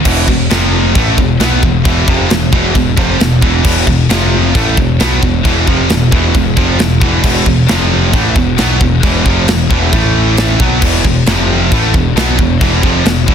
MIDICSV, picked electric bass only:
0, 0, Header, 1, 2, 480
1, 0, Start_track
1, 0, Tempo, 448430
1, 56, Time_signature, 4, 2, 24, 8
1, 14286, End_track
2, 0, Start_track
2, 0, Title_t, "Picked electric bass"
2, 0, Program_c, 0, 34
2, 58, Note_on_c, 0, 28, 108
2, 282, Note_off_c, 0, 28, 0
2, 537, Note_on_c, 0, 29, 105
2, 986, Note_off_c, 0, 29, 0
2, 1024, Note_on_c, 0, 33, 105
2, 1247, Note_off_c, 0, 33, 0
2, 1262, Note_on_c, 0, 28, 83
2, 1486, Note_off_c, 0, 28, 0
2, 1501, Note_on_c, 0, 35, 101
2, 1726, Note_off_c, 0, 35, 0
2, 1744, Note_on_c, 0, 28, 83
2, 1968, Note_off_c, 0, 28, 0
2, 1983, Note_on_c, 0, 28, 100
2, 2208, Note_off_c, 0, 28, 0
2, 2223, Note_on_c, 0, 29, 98
2, 2448, Note_off_c, 0, 29, 0
2, 2478, Note_on_c, 0, 28, 91
2, 2696, Note_off_c, 0, 28, 0
2, 2701, Note_on_c, 0, 28, 100
2, 2927, Note_off_c, 0, 28, 0
2, 2949, Note_on_c, 0, 28, 94
2, 3172, Note_off_c, 0, 28, 0
2, 3183, Note_on_c, 0, 29, 97
2, 3409, Note_off_c, 0, 29, 0
2, 3424, Note_on_c, 0, 28, 92
2, 3650, Note_off_c, 0, 28, 0
2, 3665, Note_on_c, 0, 28, 102
2, 3890, Note_off_c, 0, 28, 0
2, 3903, Note_on_c, 0, 28, 106
2, 4129, Note_off_c, 0, 28, 0
2, 4145, Note_on_c, 0, 28, 86
2, 4370, Note_off_c, 0, 28, 0
2, 4383, Note_on_c, 0, 29, 105
2, 4833, Note_off_c, 0, 29, 0
2, 4870, Note_on_c, 0, 33, 103
2, 5094, Note_off_c, 0, 33, 0
2, 5114, Note_on_c, 0, 28, 83
2, 5336, Note_off_c, 0, 28, 0
2, 5361, Note_on_c, 0, 35, 97
2, 5580, Note_off_c, 0, 35, 0
2, 5593, Note_on_c, 0, 28, 95
2, 5816, Note_off_c, 0, 28, 0
2, 5835, Note_on_c, 0, 28, 104
2, 6056, Note_off_c, 0, 28, 0
2, 6076, Note_on_c, 0, 29, 90
2, 6297, Note_off_c, 0, 29, 0
2, 6310, Note_on_c, 0, 28, 95
2, 6534, Note_off_c, 0, 28, 0
2, 6556, Note_on_c, 0, 28, 99
2, 6777, Note_off_c, 0, 28, 0
2, 6794, Note_on_c, 0, 28, 86
2, 7016, Note_off_c, 0, 28, 0
2, 7036, Note_on_c, 0, 29, 89
2, 7257, Note_off_c, 0, 29, 0
2, 7265, Note_on_c, 0, 28, 87
2, 7491, Note_off_c, 0, 28, 0
2, 7507, Note_on_c, 0, 28, 104
2, 7732, Note_off_c, 0, 28, 0
2, 7745, Note_on_c, 0, 28, 92
2, 7971, Note_off_c, 0, 28, 0
2, 7989, Note_on_c, 0, 28, 87
2, 8213, Note_off_c, 0, 28, 0
2, 8231, Note_on_c, 0, 29, 102
2, 8677, Note_off_c, 0, 29, 0
2, 8709, Note_on_c, 0, 33, 102
2, 8933, Note_off_c, 0, 33, 0
2, 8946, Note_on_c, 0, 28, 89
2, 9171, Note_off_c, 0, 28, 0
2, 9192, Note_on_c, 0, 35, 105
2, 9414, Note_off_c, 0, 35, 0
2, 9429, Note_on_c, 0, 28, 90
2, 9652, Note_off_c, 0, 28, 0
2, 9667, Note_on_c, 0, 28, 102
2, 9890, Note_off_c, 0, 28, 0
2, 9914, Note_on_c, 0, 29, 96
2, 10134, Note_off_c, 0, 29, 0
2, 10147, Note_on_c, 0, 28, 85
2, 10370, Note_off_c, 0, 28, 0
2, 10390, Note_on_c, 0, 28, 107
2, 10611, Note_off_c, 0, 28, 0
2, 10633, Note_on_c, 0, 33, 105
2, 11304, Note_off_c, 0, 33, 0
2, 11345, Note_on_c, 0, 35, 118
2, 11567, Note_off_c, 0, 35, 0
2, 11584, Note_on_c, 0, 28, 106
2, 11806, Note_off_c, 0, 28, 0
2, 11823, Note_on_c, 0, 28, 81
2, 12044, Note_off_c, 0, 28, 0
2, 12054, Note_on_c, 0, 29, 113
2, 12502, Note_off_c, 0, 29, 0
2, 12543, Note_on_c, 0, 33, 98
2, 12763, Note_off_c, 0, 33, 0
2, 12783, Note_on_c, 0, 28, 82
2, 13002, Note_off_c, 0, 28, 0
2, 13015, Note_on_c, 0, 35, 99
2, 13238, Note_off_c, 0, 35, 0
2, 13261, Note_on_c, 0, 28, 89
2, 13481, Note_off_c, 0, 28, 0
2, 13501, Note_on_c, 0, 28, 104
2, 13720, Note_off_c, 0, 28, 0
2, 13736, Note_on_c, 0, 29, 100
2, 13957, Note_off_c, 0, 29, 0
2, 13970, Note_on_c, 0, 28, 82
2, 14193, Note_off_c, 0, 28, 0
2, 14218, Note_on_c, 0, 28, 106
2, 14286, Note_off_c, 0, 28, 0
2, 14286, End_track
0, 0, End_of_file